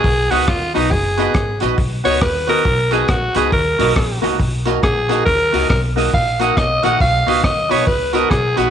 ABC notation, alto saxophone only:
X:1
M:4/4
L:1/8
Q:"Swing" 1/4=138
K:Cblyd
V:1 name="Alto saxophone"
A ^F =F ^D A3 z | z d =B _B2 A ^F A | B3 z3 A2 | B2 B z f g e g |
f2 ^d _d =B _B A ^F |]